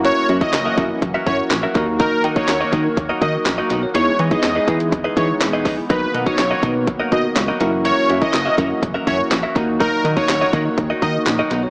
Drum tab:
HH |x-xxx-x-x-x-x-x-|x-xxx-x-x-x-x-x-|x-xxx-xxx-x-x-o-|x-xxx-x-x-x-x-x-|
CP |----x-------x---|----x-------x---|----x-------x---|----x-------x---|
SD |----o-------o---|----o-------o---|----o-------o---|----o-------o---|
BD |---o--o-o-o---o-|o--o--o-o-o-----|---o--o-o-o---o-|o--o--o-o-o-----|

HH |x-xxx-x-x-x-x-x-|x-xxx-x-x-x-x-x-|
CP |----x-------x---|----x-------x---|
SD |----o-------o---|----o-------o---|
BD |---o--o-o-o---o-|o--o--o-o-o-----|